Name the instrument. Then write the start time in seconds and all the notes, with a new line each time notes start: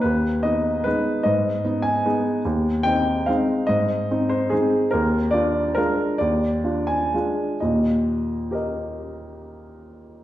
upright piano
0.01 D#2 B4
0.43 B3 D#4 D#5
0.84 G#3 B3 D#4 B4
1.23 G#2 D#5
1.64 B3 D#4
1.82 G#5
2.05 G#3 B3 D#4
2.45 D#2
2.83 C4 D#4 G5
3.26 G#3 C4 D#4 F5
3.67 G#2 D#5
4.11 C4 D#4
4.29 C5
4.50 G#3 C4 D#4 G#4
4.91 D#2 A#4
5.31 D4 F4 D5
5.75 G#3 D4 F4 A#4
6.18 D#2 D5
6.64 D4 F4
6.87 G#5
7.14 G#3 D4 F4
7.60 D#2 A#2 D#5
8.51 G4 A#4 D#5